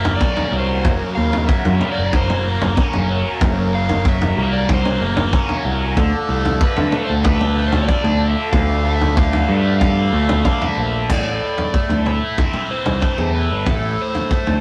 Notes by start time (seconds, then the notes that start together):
Already playing: F#1 F#2 C#3 F#3 A#3 C#4 A#4 E5
0.05 floor tom, mid tom
0.16 D5
0.20 C#4, kick, mid tom
0.37 floor tom
0.52 C2 F#3
0.59 C5
0.85 F#1 F#2, kick, floor tom
1.15 D#2 C#3 F5
1.33 floor tom
1.47 F#3 E5, kick
1.65 F#2, floor tom
1.80 A#3, mid tom
1.92 D5
1.98 F#1
2.13 F#3 C5, kick, floor tom
2.30 mid tom
2.45 A#3
2.61 F#1, floor tom, mid tom
2.76 C#4, kick, mid tom
2.93 F#1, floor tom
3.09 F#3
3.40 F#1 F#2, kick, floor tom
3.73 C#3 F5
3.89 floor tom
4.05 F#3, kick
4.09 E5
4.21 floor tom
4.37 C2 A#3
4.53 D5
4.68 F#3, kick, floor tom
4.74 C5
4.85 mid tom
5.00 F#1 A#3
5.17 floor tom, mid tom
5.33 C#4, kick, mid tom
5.49 floor tom
5.65 C2 F#3
5.96 D2 D3 F3 A3 D4 A4, kick, floor tom
6.29 C2 A3
6.45 floor tom
6.61 D3 B4, kick
6.76 D3, floor tom
6.92 A3, mid tom
7.05 C5
7.10 D2
7.24 D3 B4, kick, floor tom
7.41 mid tom
7.57 A3
7.68 C5
7.72 D2, floor tom, mid tom
7.83 C#5
7.87 D4 D5, kick, mid tom
8.04 D2, floor tom
8.21 D3
8.31 E5
8.52 D2 D3 B4 F5, kick, floor tom
8.84 A3
8.96 E5
9.01 floor tom
9.17 D3 F5, kick
9.33 floor tom
9.49 G2 A3
9.59 E5
9.80 D3 F5, kick, floor tom
10.13 D2 A3
10.29 floor tom, mid tom
10.45 D4 F5, kick, mid tom
10.62 floor tom
10.67 E5
10.78 A#1 D3
11.10 A1 A2 D5, kick, floor tom, crash
11.58 floor tom
11.74 A3, kick
11.90 D2, floor tom
12.05 E4 E5, mid tom
12.38 C4, kick, floor tom
12.53 mid tom
12.69 E3 C5
12.86 C2, floor tom, mid tom
13.01 A3, kick, mid tom
13.18 E2, floor tom
13.33 E4 B4
13.51 G1
13.66 A1 A2 A4, kick, floor tom
14.01 C5
14.15 floor tom
14.31 A3, kick
14.47 D2, floor tom